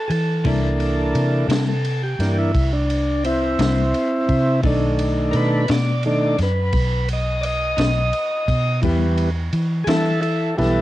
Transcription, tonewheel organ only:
0.08 0.12 G#4 medium
0.08 1.65 A4 medium
0.46 1.47 E3 medium
0.46 1.47 A#3 medium
0.46 1.47 D4 medium
1.68 2.02 A4 medium
2.03 2.37 G4 medium
2.20 2.52 E3 soft
2.20 2.52 A#3 soft
2.20 2.52 D4 soft
2.39 2.72 E4 medium
2.73 3.24 D4 medium
3.25 4.61 C4 medium
3.25 4.61 E4 loud
4.65 5.66 D#3 medium
4.65 5.66 A3 medium
4.65 5.66 D4 medium
5.31 5.36 A#4 medium
5.37 5.70 B4 loud
5.72 6.05 D5 medium
6.06 6.37 D#3 medium
6.06 6.37 A3 soft
6.06 6.37 D4 soft
6.06 6.40 D5 medium
6.43 7.09 B4 medium
7.13 7.45 D#5 medium
7.41 7.45 D5 medium
7.46 8.81 D#5 loud
8.82 9.29 E3 medium
8.82 9.30 G3 medium
8.82 9.30 B3 medium
9.84 10.20 E4 medium
9.84 9.88 G#4 medium
9.84 10.21 A4 loud
10.22 10.55 E4 medium
10.22 10.57 A4 medium
10.57 10.81 E3 medium
10.57 10.81 G3 soft
10.57 10.81 B3 medium
10.57 10.81 E4 medium
10.57 10.81 A4 medium

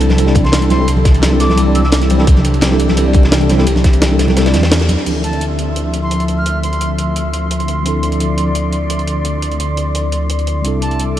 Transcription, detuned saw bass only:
0.00 0.86 C2 loud
0.88 2.26 C2 loud
2.27 3.66 C2 loud
3.67 4.36 C2 loud
4.37 4.56 C2 medium
4.54 4.97 E2 medium
5.07 10.63 D2 medium
10.65 11.20 C2 medium

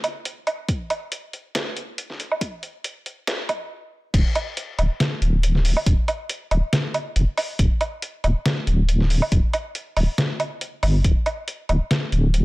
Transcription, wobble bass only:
4.14 4.25 D1 loud
4.79 4.89 D1 medium
5.22 5.75 D1 medium
5.86 5.97 D1 loud
6.51 6.62 D1 medium
7.16 7.27 F1 loud
7.59 7.70 D1 loud
8.24 8.35 D1 medium
8.67 9.21 D1 loud
9.32 9.43 D1 loud
9.97 10.07 D1 medium
10.83 11.03 G1 medium
11.05 11.15 D1 loud
11.69 11.80 D1 medium
12.12 12.45 D1 medium

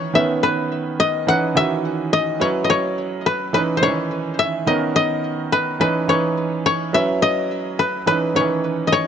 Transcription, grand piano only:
0.00 0.14 D#3 medium
0.00 0.16 E3 medium
0.00 0.14 C#4 medium
0.00 0.16 D#4 medium
0.00 0.15 B4 medium
0.14 1.17 D#3 medium
0.14 1.18 B3 medium
0.14 1.18 C#4 medium
0.14 1.18 B4 medium
1.27 1.53 E3 medium
1.27 1.53 C#4 medium
1.27 1.53 D#4 medium
1.27 1.54 B4 medium
1.55 2.33 D#3 medium
1.55 2.33 E3 medium
1.55 2.33 C#4 medium
1.55 2.33 F#4 medium
2.40 3.44 F#3 medium
2.40 3.44 C#4 medium
2.40 3.44 E4 medium
2.40 3.44 B4 medium
3.53 3.79 E3 medium
3.53 3.79 C#4 medium
3.53 3.80 D#4 medium
3.53 3.80 B4 medium
3.81 3.90 D#3 medium
3.81 4.59 C#4 medium
3.81 4.60 D#4 medium
3.81 4.60 B4 medium
3.88 4.62 E3 medium
4.67 5.70 D#3 medium
4.67 5.70 B3 medium
4.67 5.71 C#4 medium
4.67 5.71 A#4 medium
5.80 6.06 E3 medium
5.80 6.06 C#4 medium
5.80 6.06 D#4 medium
5.80 6.06 B4 medium
6.08 6.86 E3 medium
6.08 6.86 C#4 medium
6.08 6.86 D#4 medium
6.08 6.86 B4 medium
6.93 7.97 F#3 medium
6.93 7.97 C#4 medium
6.93 7.97 E4 medium
6.93 7.97 B4 medium
8.06 8.32 E3 medium
8.06 8.33 C#4 medium
8.06 8.33 D#4 medium
8.06 8.33 B4 medium
8.34 8.43 D#3 medium
8.34 9.07 C#4 medium
8.34 9.07 D#4 medium
8.34 9.07 B4 medium
8.41 9.07 E3 medium

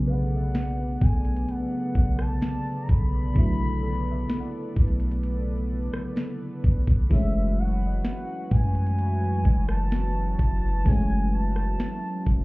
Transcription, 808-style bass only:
0.00 0.98 B1 loud
1.02 1.47 B1 loud
1.96 2.40 B1 loud
2.89 3.34 B1 loud
3.36 4.26 B1 loud
4.77 5.90 B1 loud
6.64 6.87 B1 loud
6.88 7.10 B1 loud
7.11 8.01 F#1 loud
8.52 9.42 F#2 loud
9.45 10.35 F#1 loud
10.39 10.84 F#1 loud
10.86 11.76 F#1 loud
12.27 12.44 F#1 loud

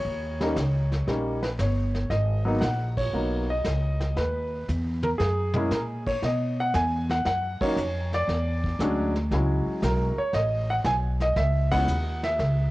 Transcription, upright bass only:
0.05 0.55 D#2 medium
0.56 1.06 C#2 medium
1.07 1.57 A#1 medium
1.59 2.09 G1 medium
2.10 2.60 G#1 medium
2.62 3.12 A#1 medium
3.13 3.63 B1 medium
3.66 4.15 C#2 medium
4.17 4.67 D#2 medium
4.68 5.18 E2 medium
5.19 5.69 F#2 medium
5.71 6.21 A#2 medium
6.22 6.72 B2 medium
6.74 7.24 E2 medium
7.25 7.58 F#2 medium
7.61 muted upright bass stroke soft
7.76 8.26 F2 medium
8.28 8.78 E2 medium
8.79 9.29 D2 medium
9.31 9.64 C#2 medium
9.67 muted upright bass stroke soft
9.82 10.15 B1 medium
10.17 muted upright bass stroke soft
10.33 10.83 A1 medium
10.85 11.35 B1 medium
11.36 11.86 C#2 medium
11.87 12.38 D#2 medium
12.39 12.71 C#2 medium

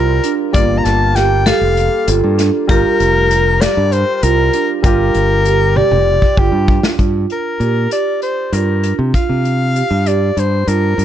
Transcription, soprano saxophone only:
0.00 0.39 A#4 medium
0.53 0.80 D5 medium
0.78 0.86 A#5 medium
0.84 1.17 A5 loud
1.15 1.48 G5 medium
1.47 2.08 F5 medium
2.70 3.62 A#4 loud
3.61 3.94 D5 medium
3.92 4.15 C5 loud
4.15 4.24 C5 medium
4.23 4.69 A#4 loud
4.84 5.78 A#4 loud
5.76 6.40 D5 loud
6.38 6.84 G4 medium
7.32 7.88 A#4 medium
7.92 8.20 D5 medium
8.23 8.55 C5 medium
8.53 8.99 A#4 medium
9.15 10.09 F5 medium
10.08 10.40 D5 medium
10.39 10.70 C5 medium
10.68 11.05 A#4 medium

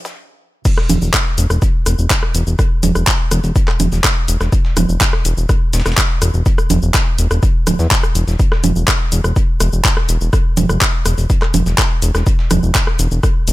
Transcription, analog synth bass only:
0.90 0.98 E1 loud
1.02 1.10 E1 medium
1.38 1.46 E1 loud
1.50 1.58 E1 medium
1.86 1.95 E1 medium
1.99 2.07 E1 medium
2.35 2.43 E1 medium
2.47 2.55 E1 medium
2.83 2.91 E1 loud
2.95 3.04 E1 medium
3.32 3.40 E1 loud
3.44 3.52 E1 medium
3.80 3.88 E1 medium
3.92 4.00 E1 medium
4.28 4.37 E1 loud
4.41 4.49 E1 medium
4.77 4.85 E1 loud
4.89 4.97 E1 medium
5.25 5.33 E1 loud
5.37 5.45 E1 medium
5.73 5.82 E1 loud
5.86 5.94 E1 medium
6.22 6.30 E1 medium
6.34 6.42 E1 medium
6.70 6.79 E1 loud
6.83 6.91 E1 medium
7.19 7.27 E1 loud
7.31 7.39 E1 medium
7.67 7.75 D1 medium
7.79 7.87 E2 medium
8.15 8.24 E1 medium
8.28 8.36 E1 medium
8.64 8.72 E1 loud
8.76 8.84 E1 medium
9.12 9.21 E1 medium
9.24 9.33 E1 medium
9.60 9.69 E1 loud
9.73 9.81 E1 medium
10.09 10.17 E1 medium
10.21 10.29 E1 medium
10.57 10.66 E1 loud
10.70 10.78 E1 medium
11.06 11.14 E1 loud
11.18 11.26 E1 medium
11.54 11.62 E1 medium
11.66 11.74 E1 medium
12.02 12.11 E1 medium
12.15 12.23 E1 medium
12.51 12.59 E1 loud
12.63 12.71 E1 medium
12.99 13.08 E1 loud
13.12 13.20 E1 medium
13.48 13.53 E1 loud

